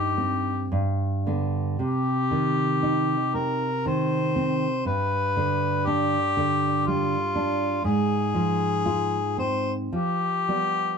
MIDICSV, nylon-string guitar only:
0, 0, Header, 1, 2, 480
1, 0, Start_track
1, 0, Key_signature, -3, "minor"
1, 0, Tempo, 1077199
1, 799, Time_signature, 3, 2, 24, 8
1, 799, Tempo, 1034483
1, 1759, Tempo, 998336
1, 4159, Tempo, 1069519
1, 4639, Tempo, 1129944
1, 5087, End_track
2, 0, Start_track
2, 0, Title_t, "Nylon-string guitar"
2, 0, Program_c, 0, 24
2, 0, Note_on_c, 0, 43, 30
2, 0, Note_on_c, 0, 63, 23
2, 79, Note_on_c, 0, 60, 26
2, 225, Note_off_c, 0, 63, 0
2, 300, Note_off_c, 0, 43, 0
2, 319, Note_on_c, 0, 43, 31
2, 320, Note_off_c, 0, 60, 0
2, 564, Note_on_c, 0, 50, 26
2, 566, Note_on_c, 0, 59, 27
2, 783, Note_off_c, 0, 50, 0
2, 784, Note_off_c, 0, 59, 0
2, 785, Note_off_c, 0, 43, 0
2, 798, Note_on_c, 0, 48, 30
2, 1040, Note_on_c, 0, 51, 31
2, 1279, Note_on_c, 0, 63, 27
2, 1425, Note_off_c, 0, 51, 0
2, 1518, Note_on_c, 0, 60, 30
2, 1664, Note_off_c, 0, 63, 0
2, 1757, Note_on_c, 0, 51, 31
2, 1904, Note_off_c, 0, 60, 0
2, 1998, Note_on_c, 0, 60, 34
2, 2146, Note_off_c, 0, 51, 0
2, 2223, Note_off_c, 0, 48, 0
2, 2235, Note_on_c, 0, 43, 36
2, 2241, Note_off_c, 0, 60, 0
2, 2483, Note_on_c, 0, 50, 36
2, 2726, Note_on_c, 0, 62, 36
2, 2868, Note_off_c, 0, 50, 0
2, 2964, Note_on_c, 0, 50, 35
2, 3107, Note_off_c, 0, 62, 0
2, 3208, Note_on_c, 0, 55, 33
2, 3343, Note_off_c, 0, 50, 0
2, 3439, Note_on_c, 0, 62, 36
2, 3585, Note_off_c, 0, 55, 0
2, 3654, Note_off_c, 0, 43, 0
2, 3673, Note_on_c, 0, 44, 41
2, 3677, Note_off_c, 0, 62, 0
2, 3914, Note_on_c, 0, 53, 38
2, 4161, Note_on_c, 0, 65, 37
2, 4299, Note_off_c, 0, 53, 0
2, 4395, Note_on_c, 0, 60, 32
2, 4541, Note_off_c, 0, 65, 0
2, 4620, Note_off_c, 0, 44, 0
2, 4640, Note_off_c, 0, 60, 0
2, 4640, Note_on_c, 0, 53, 38
2, 4878, Note_on_c, 0, 55, 26
2, 4880, Note_on_c, 0, 59, 28
2, 5087, Note_off_c, 0, 53, 0
2, 5087, Note_off_c, 0, 55, 0
2, 5087, Note_off_c, 0, 59, 0
2, 5087, End_track
0, 0, End_of_file